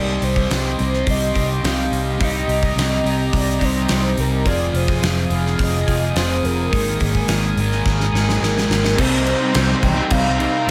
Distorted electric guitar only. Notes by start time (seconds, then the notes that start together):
Already playing: C3 G3 C4
0.78 C3 G3 C4
2.18 C3 G3 C4
3.03 C3 G3 C4
4.44 F2 C3 F3
5.30 F2 C3 F3
6.72 G#2 D#3 G#3
7.57 G#2 D#3 G#3
8.96 C3 G3 C4
9.53 C3 G3 C4
9.67 G3 C4
9.82 muted distorted electric guitar stroke
9.96 G3 C4
10.11 C3 G3 C4
10.26 G3 C4
10.39 C3 G3 C4